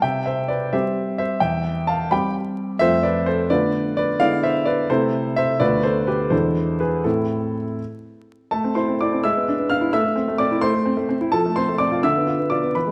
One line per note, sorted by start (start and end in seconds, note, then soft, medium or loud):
0.02 0.71 C3 soft
0.02 0.24 E5 soft
0.02 0.26 G5 medium
0.26 0.48 C5 soft
0.26 0.49 E5 medium
0.48 0.72 B4 soft
0.48 0.72 D5 medium
0.73 1.38 G3 soft
0.73 1.39 C4 soft
0.73 1.39 G4 soft
0.73 1.16 C5 soft
0.73 1.17 E5 medium
1.18 1.41 C5 medium
1.18 1.40 E5 medium
1.40 2.09 E2 soft
1.40 1.85 E5 medium
1.40 1.88 G5 medium
1.87 2.10 F5 medium
1.87 2.11 A5 medium
2.11 2.77 G3 soft
2.11 2.77 C4 soft
2.11 2.77 G4 soft
2.11 2.34 G5 medium
2.11 2.35 B5 medium
2.79 3.48 F2 medium
2.79 3.46 A3 soft
2.79 3.46 C4 soft
2.79 3.46 F4 soft
2.79 3.02 C5 medium
2.79 3.03 E5 medium
3.03 3.25 B4 soft
3.03 3.26 D5 medium
3.26 3.49 A4 medium
3.26 3.50 C5 medium
3.50 4.18 D3 medium
3.50 4.16 A3 soft
3.50 4.16 B3 soft
3.50 4.17 F4 soft
3.50 3.94 B4 medium
3.50 3.95 D5 medium
3.97 4.19 B4 medium
3.97 4.19 D5 medium
4.20 4.88 D3 medium
4.20 4.86 G#3 soft
4.20 4.86 B3 soft
4.20 4.87 E4 soft
4.20 4.42 D5 medium
4.20 4.43 F5 medium
4.43 4.65 C5 soft
4.43 4.67 E5 medium
4.65 4.88 B4 medium
4.65 4.89 D5 medium
4.90 5.59 C3 medium
4.90 5.57 A3 soft
4.90 5.57 C4 soft
4.90 5.57 E4 soft
4.90 5.34 A4 medium
4.90 5.37 C5 medium
5.36 5.59 C5 medium
5.36 5.60 E5 medium
5.60 6.30 D2 medium
5.60 6.28 A3 soft
5.60 6.28 B3 soft
5.60 6.29 F4 soft
5.60 5.83 B4 medium
5.60 5.84 D5 medium
5.83 6.07 A4 soft
5.83 6.08 C5 medium
6.07 6.30 G4 soft
6.07 6.32 B4 medium
6.30 7.02 E2 soft
6.30 7.01 G#3 soft
6.30 7.01 D4 soft
6.30 7.01 E4 soft
6.30 6.77 A4 soft
6.30 6.80 C5 medium
6.80 7.03 G#4 soft
6.80 7.05 B4 medium
7.04 7.57 A2 soft
7.04 7.64 C4 soft
7.04 7.75 E4 soft
7.04 7.78 A4 medium
8.51 9.21 A3 medium
8.51 8.75 A4 soft
8.51 8.76 A5 medium
8.64 8.83 C4 soft
8.75 8.95 E4 soft
8.75 8.98 C5 soft
8.75 8.99 C6 medium
8.88 9.07 C4 soft
9.01 9.20 E4 soft
9.01 9.23 D5 soft
9.01 9.24 D6 medium
9.13 9.24 C4 soft
9.24 9.92 G#3 medium
9.24 9.68 E5 medium
9.24 9.70 E6 medium
9.37 9.55 B3 soft
9.48 9.66 D4 soft
9.59 9.77 B3 soft
9.70 9.89 D4 soft
9.70 9.92 F5 medium
9.70 9.93 F6 medium
9.81 9.93 E4 soft
9.93 10.03 A3 medium
9.93 10.37 E5 medium
9.93 10.40 E6 medium
10.05 10.23 A3 medium
10.16 10.35 C4 soft
10.28 10.47 A3 medium
10.38 10.58 C4 soft
10.38 10.61 D5 medium
10.38 10.62 D6 medium
10.51 10.70 E4 soft
10.61 10.72 A3 medium
10.61 11.29 C5 medium
10.61 11.33 C6 medium
10.74 10.93 A3 medium
10.86 11.05 C4 medium
10.97 11.16 A3 medium
11.09 11.28 C4 medium
11.21 11.33 E4 medium
11.32 12.01 F3 medium
11.32 11.55 A4 medium
11.32 11.56 A5 medium
11.46 11.64 A3 soft
11.56 11.75 C4 soft
11.56 11.79 C5 medium
11.56 11.80 C6 medium
11.69 11.87 A3 soft
11.78 11.99 C4 soft
11.78 12.02 D5 medium
11.78 12.03 D6 medium
11.91 12.04 F4 soft
12.03 12.73 D3 medium
12.03 12.48 E5 medium
12.03 12.51 E6 medium
12.16 12.35 B3 soft
12.27 12.46 F4 soft
12.39 12.58 B3 soft
12.50 12.70 F4 soft
12.50 12.74 D5 soft
12.50 12.74 D6 medium
12.63 12.75 B3 soft
12.75 12.92 E3 soft
12.75 12.92 B4 soft
12.75 12.92 B5 medium
12.87 12.92 G#3 soft